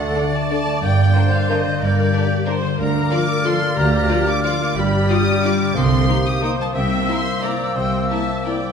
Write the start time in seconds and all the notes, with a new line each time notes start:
Already playing: D3 A3 A4 D5 F#5 A6
0.00 D4
0.15 D3 D4 A4 D5
0.33 D4 A5
0.50 D3 D4 A4 A5
0.67 A3
0.81 G1 G2 A#3 D5 G5 G6
0.99 A#3
1.15 D3 D4 A#4 C5
1.33 G4 F5
1.49 D3 D4 A#4 D#5
1.66 D3
1.82 G1 G2 A#4 D5
1.98 A#3
2.13 D3 D4 G4 A#4
2.31 G4
2.46 D3 D4 A#4 C5
2.63 D3
2.79 D2 D3 A#3 A#4 D5 A#5 F6
2.95 D4
3.11 F3 F4 D5 D6
3.28 A#4
3.44 F3 F4 A4 D5 C6
3.61 A#3
3.77 D2 D3 G4 A#5
3.93 D4
4.09 F3 F4 D5
4.27 A#4 D6
4.43 F3 F4 D5 D6
4.60 A#3
4.76 G1 G2 G3 G4 D5 B5 F6
4.92 G3
5.09 G3 D4 F4 D5 D#6
5.27 F4
5.44 G3 D4 F4 D5 D6
5.60 D3
5.74 C2 C3 A#3 A4 C5 C6 D#6
5.91 A#3
6.08 A#3 C4 D#4 G4 A#4
6.26 D#4 D#6
6.42 A#3 C4 D#4 A#4 C5 D#6
6.59 G3 A5
6.74 C2 C3 A#3 C5 E5 G5 E6
6.91 A#3
7.08 A#3 C4 E4 A#4 C6
7.26 E4
7.42 A#3 C4 E4 A#4 D5 A#5
7.60 G3
7.76 C2 C3 C5 G5
7.92 A#3
8.09 A#3 C4 E4 A#4 E5 A5
8.28 E4
8.45 A#3 C4 E4 A#4 D5 G5
8.64 G3